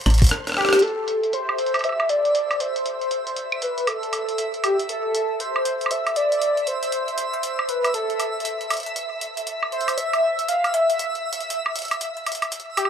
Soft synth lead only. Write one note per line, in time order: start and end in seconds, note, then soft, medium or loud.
0.00 0.32 C5 loud
0.57 0.84 G4 loud
0.82 1.33 A4 loud
1.33 1.86 C5 loud
1.84 2.11 E5 loud
2.10 2.62 D5 loud
2.61 3.64 C5 loud
3.62 3.89 B4 medium
3.88 4.64 A4 loud
4.64 4.76 G4 medium
4.90 5.42 A4 loud
5.40 5.93 C5 medium
5.91 6.18 E5 loud
6.17 6.69 D5 loud
6.67 7.70 C5 loud
7.69 7.94 B4 medium
7.94 8.66 A4 medium
9.72 9.99 C5 medium
9.98 10.50 E5 loud
10.48 10.76 F5 loud
10.74 11.25 E5 loud
12.77 12.89 G4 medium